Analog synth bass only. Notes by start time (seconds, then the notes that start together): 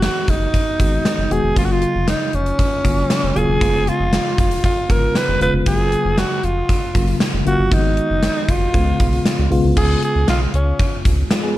0.28 F#1
0.80 G#1
1.18 F#1
1.31 E1
1.44 F1
1.56 F#1
1.95 F1
2.33 F1
2.85 F#1
3.23 F1
3.36 D#1
3.48 E1
3.61 F1
4.00 F1
4.38 F1
4.90 G#1
5.28 F1
5.40 E1
5.53 F1
5.67 F#1
6.05 F1
6.43 F1
6.95 F#1
7.33 F1
7.46 F#1
7.59 G1
7.72 G#1
8.10 F#1
8.49 F#1
8.74 C#2
9.00 B1
9.39 C#2
9.51 B1
9.64 C2
9.77 C#2
10.15 C#2
10.28 B1
10.54 C#2
11.05 C#2